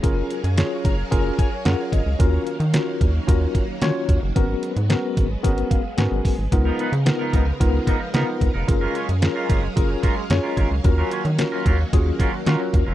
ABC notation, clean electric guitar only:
X:1
M:4/4
L:1/16
Q:1/4=111
K:F#
V:1 name="Clean electric guitar"
z16 | z16 | z16 | z [E,B,DA] [E,B,DB] z2 [E,B,DA] [E,B,DA] z3 [E,B,DA]2 [E,B,DA]2 z [E,B,DA] |
z [G,CEA] [G,CEc] z2 [G,CEA] [G,CEA] z3 [G,CEA]2 z [G,CEA] [G,CEA] z | z [F,CEA] [F,CEc] z2 [F,CEA] [F,CEA] z3 [F,CEA]2 [F,CEA]2 z [F,CEA] |]